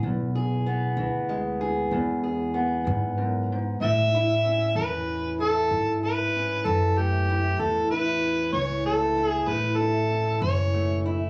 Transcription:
Already playing: E3 B3
0.03 B1 E2
0.35 G#4
0.66 B3
0.97 D2 E3
1.29 G#3
1.61 G#4
1.91 E2
2.23 G#4
2.54 B3
2.85 E2 G#2
3.18 F#2
3.52 G#2
3.81 A2 E5
4.15 E4
4.45 C#4
4.75 E2 E3 B4
5.40 E4 A4
5.71 G#2
6.03 E4 B4
6.36 C#4
6.65 F#2 E3 A4
6.98 A3 G4
7.30 E4
7.59 E2 A2 A4
7.91 E4 B4
8.23 C#4
8.53 C#2 E3 C#5
8.85 A3 A4
9.17 E4
9.27 G#4
9.47 A1 A2 B4
9.77 E4 A4
10.10 C#4
10.40 F#1 E3 C#5
10.74 A3
11.06 E4

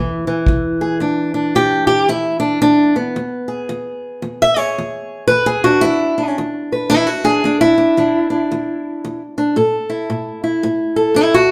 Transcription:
Already playing: E2 E3 E4
0.27 E3
0.46 E2, kick
0.81 G#4
1.00 E2 D4
1.34 D4
1.55 E2 G4
1.87 G4
2.09 E2 E4
2.40 D4
2.62 E2 D4
2.96 B3
3.16 E2
3.48 G#4
3.69 E2
4.22 E2
4.42 E5
4.57 G#4 C#5
4.78 E2
5.28 E2 B4
5.46 G#4
5.64 D4 F#4
5.81 E2 E4
6.18 D4
6.38 E2
6.72 B4
6.90 E2 E4
7.07 F#4
7.24 D4 G#4
7.44 E2 D4
7.61 E4
7.78 D4
7.97 E2 D4
8.30 D4
8.51 E2
9.04 E2
9.38 D4
9.56 A2 A4
9.90 E4
10.10 A2
10.44 E4
10.63 A2
10.96 A4
11.14 A2 E4
11.34 F#4

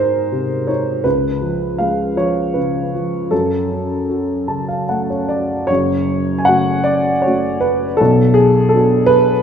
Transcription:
Already playing: G#2 D#4 F#4 G#4 A#4 C5
0.32 C3
0.67 D#4 C#5
1.04 C#2 B4
1.41 F3
1.78 G#3 F5
2.16 F3 C#5
2.54 C#3 B4
2.95 F3
3.31 F#2 A4
3.71 C#4
4.09 F#4
4.48 C#3 A5
4.68 F5
4.89 A3 F#5
5.10 C#5
5.29 D5
5.67 F#1 F#2 C#5
6.38 G#5
6.45 C#3 A3 F#4 F#5
6.84 D5
7.22 A3 C#4 C#5
7.26 F#4
7.61 B4
7.97 B1 A4
8.01 B2
8.34 G#4
8.69 A4
8.74 B3 D4 F#4
9.06 B4

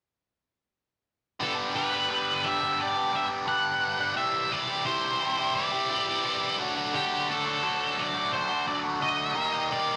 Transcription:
1.40 G2 D3 G3 B3 D4 G4 A4 B4 A5 D6
1.73 G3 B3 D4 G4 B4
1.92 G3 B3 D4 G4
2.09 G2 D3 G3 B3 D4 G4
2.44 G3 B3 D4 G4 E5
2.61 G3 B3 D4 G4
2.80 D5
2.95 G3 B3 D4 G4
3.12 G3 B3 D4 G4
3.16 E5
3.29 G3 B3 D4 G4
3.45 G2 D3 G3 B3 D4 G4 F#5
3.99 G3 B3 D4 G4
4.15 C3 E3 G3 E4 G4 E5 C6
4.50 E3 G3 E4 G4 D5
4.68 G3 E4 G4
4.85 C3 E3 G3 E4 G4 C5
5.21 E3 G3 E4 G4
5.38 G3 E4 G4
5.55 D5
5.72 G3 E4 G4
5.90 E3 G3 E4 G4
6.07 G3 E4 G4
6.24 C3 E3 G3 E4 G4
6.58 D3 F#3 A3 D4 F#4 A4 F#5 D6
6.75 A3 D4 F#4
6.93 D3 F#3 A3 D4 F#4 G4
7.27 F#3 A3 D4 F#4 A4
7.45 A3 D4 F#4
7.62 D3 F#3 A3 D4 F#4
7.96 F#3 A3 D4 F#4 D5
8.14 A3 D4 F#4
8.33 C5
8.49 A3 D4 F#4
8.66 F#3 A3 D4 F#4 D5
8.84 A3 D4 F#4
8.99 D3 F#3 A3 D4 F#4 D#5
9.33 D#3 G3 A#3 D#4 G4 A#4 A#5 C6
9.37 G4
9.53 A#3 D#4 G4
9.70 D#3 G3 A#3 D#4 G4 D5

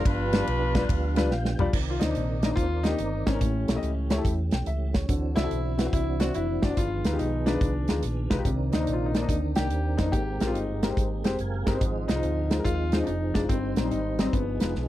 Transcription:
0.05 G1 G2 F3 B3 D4 F4 B4, kick, ride
0.12 G4
0.32 G3 D4 F4 B4, snare, ride
0.48 B1, ride
0.75 G3 D4 F4 B4 B5, kick, snare, ride
0.83 G5
0.89 D2 F5, kick, ride
1.16 G3 D4 F4 B4, snare, ride
1.26 F5
1.31 A#1 F5 G5, snare
1.45 snare
1.59 B1 G3 D4 F4 D5 B5, floor tom
1.73 C2 C3 D#3 C4 A#4 D5, kick, crash
1.90 F4
2.00 D2 A#3 D4 D#4 C5, snare, closed hi-hat
2.08 A#3 D4 D#4 C5
2.15 A#1, closed hi-hat
2.43 A#3 D4 D#4 D#5, snare, closed hi-hat
2.50 A#3 D4 D#4 C5
2.56 D#2 F4, kick, closed hi-hat
2.83 A#3 D4 D#4 G4, snare, closed hi-hat
2.99 G1, closed hi-hat
3.26 G#1 A#3 C#4 D4 D#4 C5, kick, snare, closed hi-hat
3.34 A#3 D4 D#4 A#4
3.41 A1 A2 E3 A3 C4 G4, kick, closed hi-hat
3.47 C#4
3.68 B1 A3 E4 G4 C#5, snare, closed hi-hat
3.75 A3 E4 G4 D#5
3.82 C#2, closed hi-hat
4.10 A3 E4 G4 C#5, snare, closed hi-hat
4.17 A3 E4 G4 A4
4.25 E2, kick, closed hi-hat
4.51 B1 G5, snare, closed hi-hat
4.66 C#2 E5, closed hi-hat
4.94 C#5, kick, snare, closed hi-hat
5.08 D2 D3 E3 C4 D4 F#4, kick, closed hi-hat
5.35 C2 C4 E4 F#4 D5, snare, closed hi-hat
5.42 C4 E4 F#4 A4
5.51 B1, closed hi-hat
5.78 C4 E4 F#4 B4, snare, closed hi-hat
5.85 C4 E4 F#4 C5
5.93 C2 E4, kick, closed hi-hat
6.20 C4 E4 F#4 D5, snare, closed hi-hat
6.34 F1 E4, closed hi-hat
6.62 F#1 C4 D4 E4 F#4 D5, kick, snare, closed hi-hat
6.69 C4 E4 F#4 D5
6.77 G1 G2 D#3 F3 B3 F4 G#4, kick, closed hi-hat
7.04 D2 G#3 D#4 F4 B4, snare, closed hi-hat
7.12 G#3 D#4 F4 G4
7.19 B1 D#4, closed hi-hat
7.46 G#3 D4 D#4 F4 B4, snare, closed hi-hat
7.54 G#3 D#4 F4 B4
7.61 C2, kick, closed hi-hat
7.88 D2 G#3 D#4 F4 G#4, snare, closed hi-hat
8.03 A#1, closed hi-hat
8.30 B1 G#3 D#4 F4 B4, kick, snare, closed hi-hat
8.37 G#3 D#4 F4 G4
8.45 C2 C3 D#3 A#3 C4 D4 A#4, kick, closed hi-hat
8.72 D2 A#3 D4 D#4 C5, snare, closed hi-hat
8.79 A#3 D4 D#4 C5
8.87 A#1, closed hi-hat
8.93 F4
9.06 D#4
9.14 A#3 D4 D#4 C5, snare, closed hi-hat
9.21 A#3 D4 D#4 D#5
9.29 D2 D#4, kick, closed hi-hat
9.55 C2 A#3 D4 D#4 G4, snare, closed hi-hat
9.70 D#2, closed hi-hat
9.97 F2 A#3 D4 D#4 C5, kick, snare, closed hi-hat
10.05 A#3 D4 D#4 C5
10.12 G#1 G#2 G#3 A#3 G4 A#4, kick, closed hi-hat
10.18 C4
10.40 A#1 G#3 C4 G4 A#4, snare, closed hi-hat
10.47 G#3 C4 F4 G4 C5
10.54 G1 D#4, closed hi-hat
10.82 G#3 C4 G4 A#4, snare, closed hi-hat
10.89 G#3 C4 G4 C5
10.97 G#1, kick, closed hi-hat
11.24 F1 G#3 C4 G4 C5, snare, closed hi-hat
11.39 F#1 F5 G#5, closed hi-hat
11.66 G1 G#3 C4 G4 A#4 C5 D#5, kick, snare, closed hi-hat
11.73 G#3 C4 G4 C5
11.81 G#1 G#2 F3 G#3 C4 D#4 G#4, kick, closed hi-hat
12.08 C2 G#3 D#4 F4 C5, snare, closed hi-hat
12.15 G#3 D#4 F4 C5
12.23 D2, closed hi-hat
12.50 G#3 D#4 F4 C5, snare, closed hi-hat
12.58 G#3 D#4 F4 A#4
12.64 D#2 F4, kick, closed hi-hat
12.92 G#3 D#4 F4 C5, snare, closed hi-hat
13.03 D4 D#4, closed hi-hat
13.08 F1
13.34 F#1 G#3 D4 D#4 F4 G#4, kick, snare, closed hi-hat
13.42 G#3 D#4 F4 C5
13.49 G1 G2 D#3 G3 C4 D#4 A#4, kick, closed hi-hat
13.55 C5
13.76 A#1 G3 C4 D#4 C5, snare, closed hi-hat
13.84 G3 C4 D#4 C5
13.91 G#1 D#4, closed hi-hat
14.19 G3 C4 D#4 D#5, snare, closed hi-hat
14.25 G3 C4 D#4 C5
14.33 G1 G2 F3 G#3 B3 D#4 G#4, kick, closed hi-hat
14.60 F1 G#3 D#4 F4 B4, snare, closed hi-hat
14.75 B1, snare

